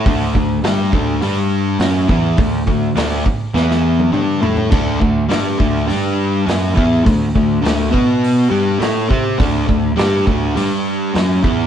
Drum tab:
CC |----------------|----------------|x---------------|----------------|
HH |o---o---o---o---|o---o-----------|----o---o---o---|o---o---o---o---|
SD |----o-------o---|----o---oo------|----o-------o---|----o-------o---|
T1 |----------------|-----------o----|----------------|----------------|
T2 |----------------|------------o---|----------------|----------------|
FT |----------------|--------------oo|----------------|----------------|
BD |o-o---o-------o-|o-o---o---------|o-o---o-------o-|o-o---o-------o-|

CC |----------------|
HH |o---o---o---o---|
SD |----o-------o---|
T1 |----------------|
T2 |----------------|
FT |----------------|
BD |o-o---o-------o-|